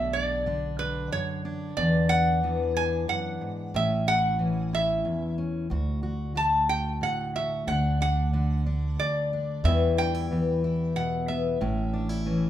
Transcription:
Already playing: B1 B2 D3 D4 E5
0.13 D4 D5
0.46 D3 D4
0.79 D4 B4
1.11 F#2 C#5
1.45 D4
1.77 E2 B3 D5
2.09 D4 F#5
2.43 E3 B3
2.76 D4 G#5
3.08 F#2 F#5
3.41 G#2
3.74 A1 A2 C#4 E5
4.07 E4 F#5
4.39 E3 C#4
4.73 E4 E5
5.05 E2
5.38 C#4
5.70 D2 F#4
6.03 F#4
6.35 D3 F#4 A5
6.69 G5
7.01 A2 F#5
7.35 F#4 E5
7.67 D2 D4 F#5
8.01 D4 F#5
8.33 D3 D4
8.66 D4
8.99 D2 D5
9.33 D4
9.64 E2 E3 G3 B3 E4 E5
9.97 D4 G5
10.15 E4
10.31 E3 B3
10.64 E4
10.96 B2 F#5
11.28 B3 E5
11.61 A1 A2 C#4
11.93 D4
12.09 E4
12.26 E3 C#4

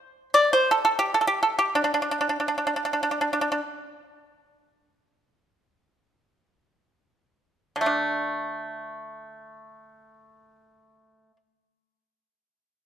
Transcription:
Already playing: C5
0.34 D5
0.53 C5
0.71 A4
0.85 A4
0.99 G4
1.14 A4
1.21 A4
1.27 G4
1.43 A4
1.59 G4
1.75 D4
1.84 D4
1.94 D4
2.02 D4
2.11 D4
2.21 D4
2.29 D4
2.40 D4
2.48 D4
2.58 D4
2.67 D4
2.76 D4
2.85 D4
2.93 D4
3.03 D4
3.11 D4
3.21 D4
3.33 D4
3.41 D4
3.52 D4
7.76 D3
7.81 A3
7.86 D4

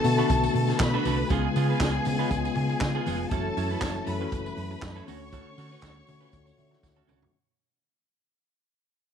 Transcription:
Already playing: D3 A3 B3 F#4 A4 A5
0.04 B2 D3 A3 B3 F#4, muted clean electric guitar stroke, open hi-hat, tambourine
0.17 D3 A3 B3 D4 F#4 B4, tambourine
0.30 B1, muted clean electric guitar stroke, kick, closed hi-hat, tambourine, muted conga
0.43 muted clean electric guitar stroke, tambourine
0.54 B2, open hi-hat, muted conga
0.67 muted clean electric guitar stroke, snare, tambourine
0.80 B2 B4 B5, muted clean electric guitar stroke, kick, snare, clap, closed hi-hat, tambourine, high conga
0.94 D4 F#4 A4
1.05 C2 D4 F#4 A4, open hi-hat, tambourine, high conga
1.19 muted clean electric guitar stroke
1.29 C#2 C#3 G#3 B3 F4 G#4 G#5, kick, closed hi-hat, tambourine, muted conga
1.56 C#3 B3 F4 G#4, open hi-hat, tambourine
1.70 B3 F4 B4
1.80 C#2 B3 F4 G#4, kick, snare, clap, closed hi-hat, tambourine, high conga
1.95 muted clean electric guitar stroke
2.05 C#3 G#3 B3 C#4, muted clean electric guitar stroke, open hi-hat, tambourine, low conga
2.19 C#3 G#3 B3 F4 B4, tambourine
2.31 C#2, kick, closed hi-hat, tambourine, muted conga
2.45 muted clean electric guitar stroke, tambourine
2.55 C#3, open hi-hat, muted conga, low conga
2.69 muted clean electric guitar stroke, tambourine
2.81 C#3, muted clean electric guitar stroke, kick, snare, clap, closed hi-hat, tambourine, high conga
2.95 B3 F4 G#4
3.06 F1 B3 F4 G#4, open hi-hat, tambourine, high conga
3.21 muted clean electric guitar stroke
3.31 F#1 E3 F#3 A3 C#4 E4 F#4 A4 A5, kick, closed hi-hat, tambourine, muted conga
3.57 F#2 C#4 E4 A4, open hi-hat, tambourine
3.70 C#4 E4 B4, tambourine
3.81 F#1 C#4 E4 A4, kick, snare, clap, closed hi-hat, tambourine, high conga
3.96 muted clean electric guitar stroke
4.06 F#2 E3 A3 C#4 A4 B4 B5, muted clean electric guitar stroke, open hi-hat, tambourine
4.19 E3 A3 C#4 E4 F#4 B4
4.32 F#1, muted clean electric guitar stroke, kick, closed hi-hat, tambourine, muted conga
4.46 muted clean electric guitar stroke, tambourine
4.57 F#2, open hi-hat, muted conga
4.71 muted clean electric guitar stroke, tambourine
4.82 F#2, muted clean electric guitar stroke, kick, snare, clap, tambourine, high conga
4.96 C#4 E4 A4, tambourine
5.07 D2 D3 A3 C#4 F#4 A4 C#5 C#6, open hi-hat, tambourine, high conga
5.21 muted clean electric guitar stroke
5.32 C#4 F#4 A4, kick, closed hi-hat, tambourine, muted conga
5.57 D3 C#4 F#4 A4, open hi-hat, tambourine, muted conga
5.70 C#4 F#4 B4, tambourine
5.81 D2 C#4 F#4 A4, kick, snare, clap, closed hi-hat, tambourine, high conga
5.97 muted clean electric guitar stroke
6.07 D3 A3 C#4 F#4 C#5, muted clean electric guitar stroke, open hi-hat, tambourine, low conga
6.21 D3 A3 C#4 F4 F#4 B4, tambourine
6.28 F#4
6.32 D2 D5, kick, closed hi-hat, tambourine, muted conga
6.46 muted clean electric guitar stroke, tambourine
6.58 D3 E5, open hi-hat, muted conga, low conga
6.71 muted clean electric guitar stroke, snare
6.83 D2 F#5, muted clean electric guitar stroke, kick, snare, tambourine, high conga
6.96 C#4 F#4 A4, tambourine
7.07 C#2 C#4 F#4 A4 F#5, mid tom, tambourine, high conga
7.21 muted clean electric guitar stroke, floor tom

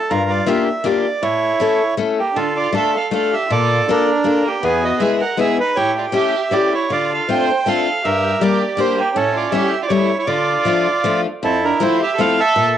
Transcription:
Already playing: A4
0.10 G2 F4 A#4
0.30 D5
0.46 A#3 D4 F4 G4 E5
0.84 A#3 D4 F4 G4 D5
1.22 A2 E4 C#5
1.60 A3 C#4 E4 A4
1.97 A3 C#4 E4 A4
2.18 A#3 G4
2.34 D3 D4 F4 A4
2.57 F4 D5
2.72 A3 D4 F4 A4 E5
2.96 A4 F5
3.11 A3 D4 F4 A4 F5
3.33 G4 E5
3.49 A#2 F4 A4 D5
3.88 A#3 D4 F4 A4 A#4
4.24 A#3 D4 F4 A4
4.45 A#3 G4
4.61 E2 B3 G#4
4.83 F#4 D#5
4.99 G#3 B3 E4 G#4 E5
5.20 A#4 F#5
5.37 G#3 B3 E4 G#4 E5
5.60 D#4 B4
5.76 A2 E4 G4 C#5
5.98 F4 D5
6.12 A3 C#4 E4 G4 E5
6.51 A3 C#4 E4 G4 D5
6.73 E4 C#5
6.90 D3 F4 D5
7.12 A4 F5
7.29 A3 C4 D4 F4 C5 G5
7.66 A3 C4 D4 F4 A4 F5
8.04 G2 G4 A#4 E5
8.41 G3 A#3 D4 G4 D5
8.77 G3 A#3 D4 G4 C5
8.98 A#3 G4
9.15 A2 C#4 A4
9.35 F4 D5
9.52 G3 A3 C#4 E4 G4 E5
9.82 F4 D5
9.88 G3 A3 C#4 E4 C#5
10.18 E4 C#5
10.27 D3 F4 D5
10.65 F3 A3 D4 F4
11.04 F3 A3 D4 F4
11.43 F2 C4 E4 A4
11.63 D4 A#4
11.80 F3 A3 C4 E4 C5
12.01 G4 E5
12.16 F3 A3 C4 A4 F5
12.21 E4
12.38 A4 E5
12.56 A#2

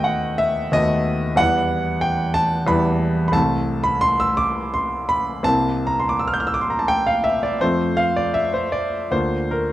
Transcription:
Already playing: D#2 A3 B3 F#4 D#5 G5
0.04 F#5
0.38 E5
0.72 D#2 A3 B3 F#4 D#5
1.36 E2 G3 B3 E4 F#5
2.01 G5
2.34 A5
2.67 E2 G3 B3 E4 B5
3.28 B5
3.32 C2 A3 C4 E4 A5
3.84 B5
4.01 C6
4.20 E6
4.37 D6
4.74 C6
5.09 B5
5.43 C2 A#3 C4 E4 A5
5.87 A#5
5.99 C6
6.09 D6
6.19 E6
6.28 F6
6.34 G6
6.40 F6
6.47 E6
6.54 D6
6.61 C6
6.70 A#5
6.79 A5
6.88 G5
7.07 F5
7.24 E5
7.43 D5
7.60 F2 A3 C4 F4 C5
7.97 F5
8.16 D5
8.34 E5
8.54 C5
8.72 D5
9.11 D2 A#3 D4 F4 C5
9.51 A#4

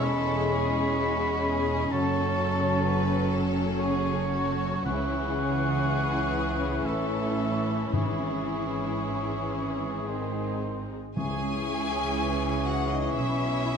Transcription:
Already playing: E1 E2 G#3 C#4 E4 G#4 C#6
0.02 A4 B5
0.52 G#4
1.00 F#4
1.46 G#4
1.92 F#1 F#2 F#3 C#4 A4 A5 C#6
2.85 B4
3.32 A4
3.79 F#3 G#4 C#5 C#6
4.30 F#4
4.86 C#2 C#3 E3 C#4 E4 G#4 F#5 C#6
5.38 G#4
6.85 A1 A2 E3 A4 E5 C#6
7.93 G#1 G#2 E3 E4 G#4 C#6
10.07 D#3 G#3 C4 D#4 C6
11.16 C#2 C#3 E3 C#4 E4 G#4 G#5 C#6
12.66 F#4 F#5
12.90 D#4 D#5
13.15 B1 B2 C#4 E4 E5

